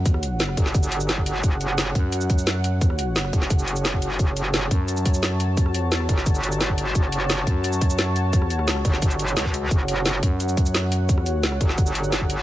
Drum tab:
HH |x-x-x-x-x-x-x-x-|x-x-x-x-x-x-x-x-|x-x-x-x-x-x-x-x-|x-x-x-x-x-x-x-x-|
SH |x-x-x---xxxxx-x-|x-x-x---xxxxx-x-|x-x-x-x-xxxxx-x-|x-x-x---xxxxx-x-|
SD |-r--or-o----o---|---ror------o---|-r--or-o----o---|---ror------o---|
BD |o-----o-o----o--|o-----o---o-----|o-----o-o----o--|o-----o---o-----|

HH |x-x-x-x-x-x-x-x-|x-x-x-x-x-x-x-x-|x-x-x-x-x-x-x-x-|x-x-x-x-x-x-x-x-|
SH |x-x-x---xxxxx-x-|x-x-x---xxxxx-x-|x-x-x-x-xxxxx-x-|x-x-x---xxxxx-x-|
SD |-r--or-o----o---|---ror------o---|-r-ror-o----o---|---ror------o---|
BD |o-----o-o----o--|o-----o---o-----|o-----o-o----o--|o-----o---o-----|

HH |x-x-x-x-x-x-x-x-|
SH |x-x-x---xxxxx-x-|
SD |-r--or-o----o---|
BD |o-----o-o----o--|